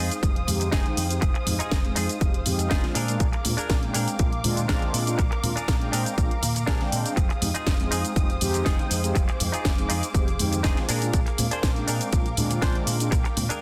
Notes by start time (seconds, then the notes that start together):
Already playing: G#3 C4 D#4 F4 G#4 C5 F5 D#6
0.00 G#4
0.11 closed hi-hat, shaker
0.22 F1 G#3 C4 D#4 G4, muted clean electric guitar stroke, kick, closed hi-hat, shaker
0.36 closed hi-hat
0.47 F2 G#3 C4 D#4 G4, open hi-hat, high conga, low conga, shaker
0.60 muted clean electric guitar stroke, closed hi-hat, high conga, shaker
0.71 F1 G#3 C4 D#4 F4 G#4 G5, kick, snare, closed hi-hat, shaker
0.86 closed hi-hat, high conga
0.96 F2, muted clean electric guitar stroke, open hi-hat, shaker
1.10 G#3 C4 D#4 G4, closed hi-hat, shaker
1.21 F1, muted clean electric guitar stroke, kick, closed hi-hat, shaker
1.34 muted clean electric guitar stroke, closed hi-hat
1.46 F2 G#3 C4 D#4 G4, muted clean electric guitar stroke, open hi-hat, low conga, shaker
1.59 D#4 F4 G#4, muted fingered electric bass stroke, closed hi-hat, shaker
1.71 F1, kick, snare, closed hi-hat, shaker
1.84 G#3 C4 D#4 G#4, closed hi-hat
1.96 F2 D#4 F4 G#4, open hi-hat, shaker
2.09 closed hi-hat, shaker
2.20 F1 G#3 C4 D#4 G4, muted clean electric guitar stroke, kick, closed hi-hat, shaker
2.34 closed hi-hat
2.46 F2 G#3 C4 D#4 G4, open hi-hat, high conga, low conga, shaker
2.58 muted clean electric guitar stroke, closed hi-hat, high conga, shaker
2.70 F1 G#3 C4 D4 D#4 F4 G#4, kick, snare, closed hi-hat, shaker
2.84 snare, closed hi-hat, high conga
2.95 A#2 D4 G#4 A#4 D6, open hi-hat, shaker
3.08 G#3 C4 D4 F4, closed hi-hat, shaker
3.20 A#1, kick, closed hi-hat, shaker
3.33 muted clean electric guitar stroke, closed hi-hat
3.44 A#2 G#3 C4 D4 F4, muted clean electric guitar stroke, open hi-hat, low conga, shaker
3.57 D4 G#4 A#4, muted fingered electric bass stroke, closed hi-hat, shaker
3.70 A#1, kick, snare, closed hi-hat, shaker
3.82 G#3 C4 D4 G5, closed hi-hat
3.94 A#2 D4 G#4 A#4, open hi-hat, shaker
4.08 closed hi-hat, shaker
4.19 A#1 G#3 C4 D4 F4, muted clean electric guitar stroke, kick, closed hi-hat, shaker
4.33 closed hi-hat
4.43 A#2 G#3 C4 D4 F4, open hi-hat, high conga, low conga, shaker
4.57 muted clean electric guitar stroke, closed hi-hat, high conga, shaker
4.68 A#1 G#3 C4 D4 F4 G#4 A#4, kick, snare, closed hi-hat, shaker
4.82 closed hi-hat, high conga
4.93 A#2 A#5, muted clean electric guitar stroke, open hi-hat, shaker
5.07 G#3 C4 D4 F4, closed hi-hat, shaker
5.18 A#1, muted clean electric guitar stroke, kick, closed hi-hat, shaker
5.31 muted clean electric guitar stroke, closed hi-hat
5.43 A#2 G#3 C4 D4 F4, muted clean electric guitar stroke, open hi-hat, high conga, low conga, shaker
5.56 D4 G#4 A#4, muted fingered electric bass stroke, closed hi-hat, shaker
5.68 A#1, kick, snare, closed hi-hat, shaker
5.81 G#3 C4 D4 G5, closed hi-hat
5.92 A#2 D4 G#4 A#4, open hi-hat, shaker
6.06 closed hi-hat, shaker
6.17 A#1 G#3 C4 D4 F4, muted clean electric guitar stroke, kick, closed hi-hat, shaker
6.31 closed hi-hat
6.42 A#2, open hi-hat, high conga, low conga, shaker
6.55 muted clean electric guitar stroke, closed hi-hat, high conga, shaker
6.66 A#1 G#3 C4 D4 G4 G#4 A#4, kick, snare, closed hi-hat, shaker
6.80 G#3 C4 D4 G5, snare, closed hi-hat, high conga
6.92 A#2, muted clean electric guitar stroke, open hi-hat, shaker
7.06 closed hi-hat, shaker
7.16 F1 G#4 C5 D#6, muted clean electric guitar stroke, kick, closed hi-hat, maracas, shaker
7.29 muted clean electric guitar stroke, closed hi-hat, maracas
7.41 F2 G#3 C4 D#4 G4, muted clean electric guitar stroke, open hi-hat, low conga, shaker
7.54 D#4 F4 G#4, muted fingered electric bass stroke, closed hi-hat, maracas, shaker
7.66 F1, kick, snare, closed hi-hat, maracas, shaker
7.79 G#3 C4 D#4 G#4, closed hi-hat, maracas
7.91 F2 D#4 F4 G#4, open hi-hat, shaker
8.04 closed hi-hat, maracas, shaker
8.16 F1 G#3 C4 D#4 G4, muted clean electric guitar stroke, kick, closed hi-hat, maracas, shaker
8.30 closed hi-hat, maracas
8.41 F2 G#3 C4 D#4 G4, open hi-hat, high conga, low conga, shaker
8.54 muted clean electric guitar stroke, closed hi-hat, high conga, shaker, maracas
8.65 F1 G#3 C4 D#4 F4 G#4 G5, kick, snare, closed hi-hat, maracas, shaker
8.79 closed hi-hat, high conga, maracas
8.90 F2, muted clean electric guitar stroke, open hi-hat, shaker
9.03 G#3 C4 D#4 G4, closed hi-hat, shaker, maracas
9.15 F1 D6, muted clean electric guitar stroke, kick, closed hi-hat, shaker, maracas
9.28 muted clean electric guitar stroke, closed hi-hat, maracas
9.40 F2 G#3 C4 D#4 G4, muted clean electric guitar stroke, open hi-hat, low conga, shaker
9.52 D#4 F4 G#4, muted fingered electric bass stroke, closed hi-hat, shaker, maracas
9.65 F1, kick, snare, closed hi-hat, maracas, shaker
9.78 G#3 C4 D#4 G#4, closed hi-hat, maracas
9.89 F2 D#4 F4 G#4, open hi-hat, shaker
10.03 closed hi-hat, maracas, shaker
10.14 F1 G#3 C4 D#4 G4, muted clean electric guitar stroke, kick, closed hi-hat, maracas, shaker
10.28 closed hi-hat, maracas
10.39 F2 G#3 C4 D#4 G4, open hi-hat, high conga, low conga, shaker
10.52 muted clean electric guitar stroke, closed hi-hat, high conga, maracas, shaker
10.63 F1 G#3 C4 D4 D#4 F4 G#4, kick, snare, closed hi-hat, shaker, maracas
10.77 snare, closed hi-hat, high conga, maracas
10.88 A#2 D4 G#4 A#4 F5 D6, open hi-hat, shaker
11.02 G#3 C4 D4 F4, closed hi-hat, shaker, maracas
11.13 A#1, kick, closed hi-hat, maracas, shaker
11.26 muted clean electric guitar stroke, closed hi-hat, maracas
11.38 A#2 G#3 C4 D4 F4, muted clean electric guitar stroke, open hi-hat, low conga, shaker
11.51 D4 G#4 C5, muted fingered electric bass stroke, closed hi-hat, shaker, maracas
11.63 A#1, kick, snare, closed hi-hat, shaker, maracas
11.76 G#3 C4 D4 G5, closed hi-hat, maracas
11.87 A#2 D4 G#4 A#4, open hi-hat, shaker
12.01 closed hi-hat, maracas, shaker
12.12 A#1 G#3 C4 D4 F4, muted clean electric guitar stroke, kick, closed hi-hat, maracas, shaker
12.26 closed hi-hat, maracas
12.37 A#2 G#3 C4 D4 F4, open hi-hat, high conga, low conga, shaker
12.50 muted clean electric guitar stroke, closed hi-hat, high conga, maracas, shaker
12.62 A#1 G#3 C4 D4 F4 G#4 C5, kick, snare, closed hi-hat, maracas, shaker
12.74 closed hi-hat, high conga, maracas
12.87 A#2 G5, muted clean electric guitar stroke, open hi-hat, shaker
13.00 G#3 C4 D4 F4, closed hi-hat, maracas, shaker
13.11 A#1, muted clean electric guitar stroke, kick, closed hi-hat, shaker, maracas
13.24 muted clean electric guitar stroke, closed hi-hat, maracas
13.36 A#2 G#3 C4 D4 F4, muted clean electric guitar stroke, open hi-hat, high conga, low conga, shaker
13.49 D4 G#4 A#4, muted fingered electric bass stroke, closed hi-hat, maracas, shaker